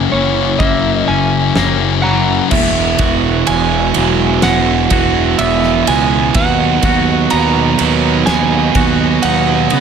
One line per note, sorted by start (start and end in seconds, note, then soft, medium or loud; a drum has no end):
0.00 0.10 F#2 medium
0.00 1.09 F#2 medium
0.00 0.11 C#3 medium
0.00 0.12 F#3 medium
0.00 0.12 A#3 medium
0.00 0.59 A#3 medium
0.00 2.48 A#3 medium
0.00 0.13 C#4 medium
0.00 2.48 F#4 medium
0.00 2.49 E5 medium
0.00 0.16 G#5 loud
0.11 0.54 F#1 medium
0.11 0.58 F#2 medium
0.11 0.59 C#3 medium
0.11 2.03 E3 medium
0.11 0.60 F#3 medium
0.11 0.60 A#3 medium
0.11 0.60 C#4 loud
0.11 0.57 C#5 medium
0.59 1.02 F#1 medium
0.59 1.55 F#2 loud
0.59 1.55 C#3 loud
0.59 1.56 F#3 medium
0.59 1.55 A#3 medium
0.59 1.57 A#3 loud
0.59 1.57 C#4 loud
0.59 0.96 E5 medium
0.59 kick medium
0.96 1.09 D#5 medium
1.08 1.50 F#1 medium
1.08 2.52 C#4 medium
1.08 2.03 G#5 medium
1.56 2.39 F#1 medium
1.56 2.02 F#2 medium
1.56 2.03 C#3 medium
1.56 2.04 F#3 medium
1.56 2.52 A#3 medium
1.56 2.04 A#3 medium
1.56 2.05 C#4 loud
1.56 snare loud
2.02 2.49 F#2 medium
2.02 2.49 C#3 medium
2.02 2.52 E3 medium
2.02 2.50 F#3 medium
2.02 2.50 A#3 medium
2.02 2.50 C#4 loud
2.02 2.51 F#5 loud
2.02 2.48 A#5 medium
2.51 2.94 E1 medium
2.51 2.98 E2 medium
2.51 4.92 E2 medium
2.51 2.99 B2 loud
2.51 2.99 E3 loud
2.51 6.32 G#3 medium
2.51 9.80 F#4 medium
2.51 3.44 E5 medium
2.51 6.32 E5 medium
2.51 kick loud
2.51 crash loud
2.99 3.42 E1 medium
2.99 3.45 E2 medium
2.99 3.46 B2 loud
2.99 3.47 E3 loud
2.99 4.92 F#4 medium
2.99 kick medium
2.99 ride medium
3.47 3.91 E1 medium
3.47 3.94 E2 medium
3.47 3.95 B2 medium
3.47 3.95 E3 medium
3.47 4.43 G#3 medium
3.47 4.46 G#5 loud
3.47 ride loud
3.94 4.38 E1 medium
3.94 4.41 E2 medium
3.94 4.42 B2 medium
3.94 4.43 E3 medium
3.94 6.36 F#3 medium
3.94 ride medium
4.42 4.86 E1 medium
4.42 4.89 E2 medium
4.42 4.90 B2 medium
4.42 4.91 E3 medium
4.42 5.88 G#3 medium
4.42 5.38 F#5 loud
4.42 snare loud
4.42 ride loud
4.90 5.34 E1 medium
4.90 5.37 E2 medium
4.90 5.38 B2 medium
4.90 5.39 E3 medium
4.90 6.85 F#4 medium
4.90 kick medium
4.90 ride medium
5.38 5.82 E1 medium
5.38 5.85 E2 loud
5.38 5.86 B2 loud
5.38 5.87 E3 loud
5.38 6.36 B3 medium
5.38 5.89 E5 medium
5.38 ride loud
5.63 snare soft
5.86 6.30 C#2 medium
5.86 6.32 E2 medium
5.86 6.33 B2 medium
5.86 6.33 E3 loud
5.86 6.36 G#3 medium
5.86 6.37 G#5 loud
5.86 ride medium
6.34 6.78 D#2 medium
6.34 6.82 B2 loud
6.34 7.79 D#3 medium
6.34 6.84 F#3 medium
6.34 9.80 B3 medium
6.34 6.83 B3 loud
6.34 9.80 D#5 medium
6.34 7.35 F#5 loud
6.34 kick loud
6.34 ride loud
6.83 7.26 D#2 medium
6.83 7.30 B2 loud
6.83 7.31 F#3 loud
6.83 7.31 B3 loud
6.83 8.76 F#4 medium
6.83 kick medium
6.83 ride medium
7.30 7.74 D#2 medium
7.30 7.78 B2 medium
7.30 7.80 F#3 loud
7.30 8.28 B3 medium
7.30 7.79 B3 loud
7.30 8.23 A#5 loud
7.30 ride loud
7.79 8.22 D#2 medium
7.79 8.26 B2 medium
7.79 9.80 D#3 medium
7.79 8.27 F#3 loud
7.79 8.27 B3 medium
7.79 ride medium
8.26 8.70 D#2 medium
8.26 8.74 B2 loud
8.26 8.76 F#3 medium
8.26 8.75 B3 loud
8.26 9.71 B3 medium
8.26 9.22 G#5 loud
8.26 snare loud
8.26 ride loud
8.75 9.18 D#2 loud
8.75 9.22 B2 medium
8.75 9.24 F#3 loud
8.75 9.24 B3 loud
8.75 9.80 F#4 medium
8.75 kick medium
8.75 ride medium
9.22 9.66 D#2 medium
9.22 9.71 B2 loud
9.22 9.73 F#3 loud
9.22 9.72 B3 loud
9.22 9.80 D#4 medium
9.22 9.80 F#5 medium
9.22 ride loud
9.70 9.80 B2 medium
9.70 9.80 C#3 medium
9.70 9.80 F#3 medium
9.70 9.80 B3 medium
9.70 ride medium